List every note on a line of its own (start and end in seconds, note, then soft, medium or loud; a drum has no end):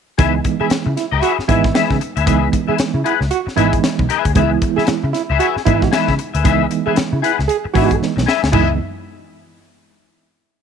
0.18 0.39 C#2 loud
0.18 0.84 E3 medium
0.18 0.84 G#3 medium
0.18 0.85 B3 medium
0.18 0.85 D#4 medium
0.18 0.38 G#4 medium
0.18 0.34 B4 loud
0.18 0.33 E5 medium
0.18 kick loud
0.18 closed hi-hat medium
0.34 muted clean electric guitar stroke soft
0.44 muted clean electric guitar stroke soft
0.44 kick medium
0.44 closed hi-hat medium
0.60 0.67 G#4 medium
0.60 0.69 G#4 soft
0.60 0.70 B4 medium
0.60 0.70 E5 medium
0.60 muted picked electric bass stroke soft
0.70 muted clean electric guitar stroke soft
0.70 muted picked electric bass stroke soft
0.70 snare medium
0.70 closed hi-hat medium
0.86 0.94 C#3 medium
0.86 0.94 E4 medium
0.86 muted clean electric guitar stroke medium
0.96 1.06 E4 medium
0.96 snare soft
0.96 closed hi-hat medium
1.11 1.20 C#2 medium
1.11 1.21 G#4 medium
1.11 1.22 B4 medium
1.11 1.23 E5 medium
1.22 1.32 F#4 loud
1.22 1.42 G#4 medium
1.22 1.37 B4 medium
1.22 1.36 E5 medium
1.22 closed hi-hat medium
1.37 muted clean electric guitar stroke soft
1.37 muted picked electric bass stroke soft
1.37 snare soft
1.48 1.69 G#1 loud
1.48 1.97 E3 medium
1.48 1.97 G#3 medium
1.48 1.98 B3 medium
1.48 1.98 D#4 medium
1.48 1.69 E4 loud
1.48 1.65 G#4 medium
1.48 1.64 B4 medium
1.48 1.63 E5 medium
1.48 kick loud
1.48 closed hi-hat medium
1.64 muted clean electric guitar stroke soft
1.64 kick loud
1.64 snare soft
1.74 1.95 G#4 medium
1.74 1.95 B4 medium
1.74 1.95 E5 loud
1.74 snare medium
1.74 closed hi-hat medium
1.90 1.99 C#3 loud
1.90 kick medium
1.90 snare soft
2.00 muted clean electric guitar stroke soft
2.00 closed hi-hat medium
2.16 2.25 D2 medium
2.16 2.25 G#4 soft
2.16 2.26 B4 medium
2.16 2.27 E5 medium
2.16 closed hi-hat medium
2.26 2.47 C#2 medium
2.26 2.92 E3 medium
2.26 2.93 G#3 medium
2.26 2.93 B3 medium
2.26 2.93 D#4 medium
2.26 2.47 G#4 medium
2.26 2.47 B4 medium
2.26 2.48 E5 medium
2.26 kick loud
2.26 closed hi-hat medium
2.52 muted clean electric guitar stroke soft
2.52 kick medium
2.52 closed hi-hat medium
2.68 2.75 G#4 medium
2.68 2.77 G#4 soft
2.68 2.78 B4 medium
2.68 2.78 E5 medium
2.68 muted picked electric bass stroke soft
2.78 muted clean electric guitar stroke soft
2.78 muted picked electric bass stroke soft
2.78 snare medium
2.78 closed hi-hat medium
2.94 3.03 C#3 loud
2.94 3.03 E4 medium
3.04 3.14 E4 medium
3.04 3.22 G#4 medium
3.04 3.20 B4 medium
3.04 3.20 F#5 medium
3.04 closed hi-hat medium
3.20 3.29 C#2 medium
3.20 muted clean electric guitar stroke soft
3.20 snare soft
3.31 3.40 F#4 loud
3.31 closed hi-hat medium
3.46 muted clean electric guitar stroke soft
3.46 muted picked electric bass stroke soft
3.46 snare soft
3.56 3.78 G#1 loud
3.56 4.05 E3 medium
3.56 4.06 G#3 medium
3.56 4.06 B3 medium
3.56 4.06 D#4 loud
3.56 3.78 E4 loud
3.56 3.77 G#4 medium
3.56 3.73 B4 medium
3.56 3.71 E5 medium
3.56 closed hi-hat medium
3.72 muted clean electric guitar stroke soft
3.72 kick medium
3.72 closed hi-hat soft
3.84 snare loud
3.84 closed hi-hat medium
3.99 4.07 B1 medium
3.99 muted clean electric guitar stroke soft
3.99 kick medium
4.09 4.31 G#4 medium
4.09 4.25 B4 loud
4.09 4.24 E5 medium
4.09 closed hi-hat medium
4.25 4.33 D2 medium
4.25 muted clean electric guitar stroke medium
4.25 kick medium
4.25 closed hi-hat medium
4.35 4.56 C#2 loud
4.35 5.02 E3 medium
4.35 5.02 G#3 medium
4.35 5.02 B3 medium
4.35 4.44 D#4 medium
4.35 4.56 G#4 medium
4.35 4.51 B4 medium
4.35 4.50 E5 loud
4.35 kick loud
4.35 closed hi-hat medium
4.43 5.05 E4 medium
4.51 muted clean electric guitar stroke soft
4.62 muted clean electric guitar stroke soft
4.62 kick medium
4.62 closed hi-hat medium
4.76 4.83 G#4 medium
4.76 4.86 G#4 soft
4.76 4.87 B4 soft
4.76 4.88 E5 medium
4.76 muted picked electric bass stroke soft
4.76 snare soft
4.87 muted clean electric guitar stroke soft
4.87 muted picked electric bass stroke soft
4.87 snare loud
4.87 closed hi-hat medium
5.02 5.12 C#3 medium
5.02 5.11 E4 medium
5.02 muted clean electric guitar stroke soft
5.13 5.23 E4 medium
5.13 snare soft
5.13 closed hi-hat medium
5.30 5.38 C#2 medium
5.30 5.39 G#4 medium
5.30 5.40 B4 medium
5.30 5.41 E5 medium
5.39 5.49 F#4 loud
5.39 5.60 G#4 medium
5.39 5.56 B4 medium
5.39 5.55 E5 medium
5.39 closed hi-hat medium
5.56 muted clean electric guitar stroke soft
5.56 muted picked electric bass stroke soft
5.56 snare soft
5.65 5.87 G#1 medium
5.65 6.15 E3 medium
5.65 6.15 G#3 medium
5.65 6.15 B3 medium
5.65 6.15 D#4 medium
5.65 5.87 E4 loud
5.65 5.83 G#4 medium
5.65 5.82 B4 medium
5.65 5.80 E5 medium
5.65 kick medium
5.65 closed hi-hat medium
5.82 muted clean electric guitar stroke soft
5.82 kick loud
5.82 snare soft
5.92 6.12 G#4 loud
5.92 6.13 B4 loud
5.92 6.13 E5 loud
5.92 snare medium
5.92 closed hi-hat medium
6.08 6.16 C#3 loud
6.08 kick medium
6.08 snare soft
6.18 muted clean electric guitar stroke soft
6.18 closed hi-hat medium
6.34 6.45 D2 medium
6.34 6.43 G#4 soft
6.34 6.44 B4 medium
6.34 6.45 E5 medium
6.34 closed hi-hat medium
6.44 6.65 C#2 loud
6.44 7.10 E3 medium
6.44 7.11 G#3 medium
6.44 7.11 B3 medium
6.44 7.11 D#4 medium
6.44 6.64 G#4 medium
6.44 6.65 B4 medium
6.44 6.65 E5 loud
6.44 kick loud
6.44 closed hi-hat medium
6.71 muted clean electric guitar stroke soft
6.71 closed hi-hat medium
6.86 6.93 G#4 medium
6.86 6.95 G#4 medium
6.86 6.96 B4 medium
6.86 6.97 E5 medium
6.86 muted picked electric bass stroke soft
6.96 muted clean electric guitar stroke soft
6.96 muted picked electric bass stroke soft
6.96 snare loud
6.96 closed hi-hat medium
7.12 7.21 C#3 loud
7.12 7.20 E4 medium
7.22 7.32 E4 medium
7.22 7.39 G#4 medium
7.22 7.38 B4 medium
7.22 7.38 F#5 medium
7.22 closed hi-hat medium
7.38 7.47 C#2 medium
7.38 muted clean electric guitar stroke medium
7.38 snare soft
7.48 7.58 G#4 loud
7.48 closed hi-hat medium
7.64 muted clean electric guitar stroke soft
7.64 muted picked electric bass stroke soft
7.74 7.95 G#1 medium
7.74 8.23 E3 medium
7.74 8.23 G#3 medium
7.74 8.24 B3 medium
7.74 7.83 D4 medium
7.74 7.95 F#4 loud
7.74 7.95 G#4 medium
7.74 7.91 B4 medium
7.74 7.90 E5 medium
7.74 kick medium
7.74 open hi-hat medium
7.82 8.27 D#4 medium
7.91 muted clean electric guitar stroke medium
7.91 kick medium
7.91 closed hi-hat soft
8.02 muted picked electric bass stroke soft
8.02 snare soft
8.16 8.25 B1 medium
8.16 muted clean electric guitar stroke soft
8.16 snare medium
8.26 8.47 G#4 medium
8.26 8.42 B4 loud
8.26 8.41 E5 loud
8.26 snare medium
8.42 8.51 D2 medium
8.42 muted clean electric guitar stroke soft
8.42 snare medium
8.52 8.77 C#2 medium
8.52 8.77 E3 medium
8.52 8.77 G#3 medium
8.52 8.77 B3 medium
8.52 8.77 D#4 medium
8.52 8.71 E4 medium
8.52 8.70 G#4 medium
8.52 8.71 B4 medium
8.52 8.71 E5 medium
8.52 kick medium
8.52 floor tom loud
8.52 crash medium